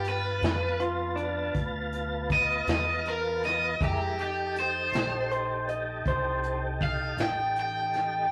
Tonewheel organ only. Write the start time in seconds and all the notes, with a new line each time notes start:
Already playing: B3 F4 A5
3.81 G#3 E4 A#4
4.18 D#4 G4 A4